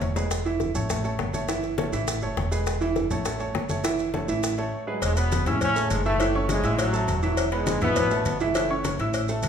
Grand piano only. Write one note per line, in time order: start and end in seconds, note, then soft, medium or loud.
0.00 0.11 A3 medium
0.00 0.11 A4 medium
0.00 0.11 C#5 medium
0.16 0.40 G#3 medium
0.16 0.40 G#4 medium
0.16 0.40 B4 medium
0.46 0.70 E3 medium
0.46 0.70 E4 medium
0.46 0.70 E5 medium
0.75 0.87 A3 medium
0.75 0.87 A4 medium
0.75 0.87 C#5 medium
0.90 1.02 A3 medium
0.90 1.02 A4 medium
0.90 1.02 C#5 medium
1.04 1.28 A3 medium
1.04 1.29 A4 medium
1.04 1.29 C#5 medium
1.34 1.46 A3 medium
1.34 1.46 A4 medium
1.34 1.46 C#5 medium
1.49 1.73 E3 medium
1.49 1.73 E4 medium
1.49 1.73 E5 medium
1.78 1.90 A3 medium
1.78 1.90 A4 medium
1.78 1.90 C#5 medium
1.93 2.17 E3 medium
1.93 2.17 E4 medium
1.93 2.17 E5 medium
2.22 2.46 A3 medium
2.22 2.47 A4 medium
2.22 2.47 C#5 medium
2.52 2.76 G#3 medium
2.52 2.76 G#4 medium
2.52 2.76 B4 medium
2.81 3.05 E3 medium
2.81 3.05 E4 medium
2.81 3.06 E5 medium
3.11 3.23 A3 medium
3.11 3.23 A4 medium
3.11 3.23 C#5 medium
3.26 3.38 A3 medium
3.26 3.38 A4 medium
3.26 3.38 C#5 medium
3.40 3.64 A3 medium
3.40 3.64 A4 medium
3.40 3.64 C#5 medium
3.70 3.82 A3 medium
3.70 3.82 A4 medium
3.70 3.82 C#5 medium
3.84 4.08 E3 medium
3.84 4.08 E4 medium
3.84 4.09 E5 medium
4.13 4.26 A3 medium
4.13 4.26 A4 medium
4.13 4.26 C#5 medium
4.28 4.52 E3 medium
4.28 4.53 E4 medium
4.28 4.53 E5 medium
4.58 4.82 A3 medium
4.58 4.82 A4 medium
4.58 4.82 C#5 medium
4.87 4.99 G#3 medium
4.87 5.00 G#4 medium
4.87 5.00 B4 medium
5.17 5.41 B3 medium
5.17 5.41 B4 medium
5.17 5.41 B5 medium
5.47 5.71 E4 medium
5.47 5.71 E5 medium
5.47 5.71 E6 medium
5.76 6.00 A3 medium
5.76 6.00 A4 medium
5.76 6.00 A5 medium
6.06 6.17 E3 medium
6.06 6.17 E4 medium
6.06 6.18 E5 loud
6.20 6.32 E3 medium
6.20 6.32 E4 medium
6.20 6.33 E5 medium
6.35 6.59 C#4 medium
6.35 6.59 C#5 medium
6.35 6.59 C#6 medium
6.64 6.88 E4 medium
6.64 6.88 E5 medium
6.64 6.88 E6 medium
6.93 7.17 A3 medium
6.93 7.17 A4 medium
6.93 7.18 A5 medium
7.23 7.47 E3 medium
7.23 7.47 E4 medium
7.23 7.47 E5 medium
7.52 7.76 B3 medium
7.52 7.76 B4 medium
7.52 7.76 B5 medium
7.82 8.06 E4 medium
7.82 8.06 E5 medium
7.82 8.06 E6 medium
8.11 8.35 A3 medium
8.11 8.35 A4 medium
8.11 8.36 A5 medium
8.41 8.53 E3 medium
8.41 8.53 E4 medium
8.41 8.53 E5 medium
8.55 8.67 E3 medium
8.55 8.68 E4 medium
8.55 8.68 E5 medium
8.70 8.94 C#4 medium
8.70 8.94 C#5 medium
8.70 8.94 C#6 medium
9.00 9.24 E4 medium
9.00 9.24 E5 medium
9.00 9.24 E6 medium
9.29 9.48 A3 medium
9.29 9.48 A4 medium
9.29 9.48 A5 medium